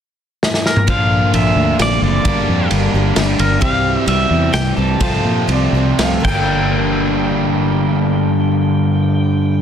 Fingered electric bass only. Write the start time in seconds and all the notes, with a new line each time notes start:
0.88 A#1
1.33 A#1
1.56 D2
1.79 A#1
2.02 F#1
2.25 G1
2.49 F2
2.71 G1
2.94 G1
3.17 G1
3.39 G1
3.62 C2
4.07 C2
4.30 E2
4.54 C2
4.78 C2
5.01 C2
5.25 A#2
5.48 C2
5.72 C2
5.99 C2
6.24 G1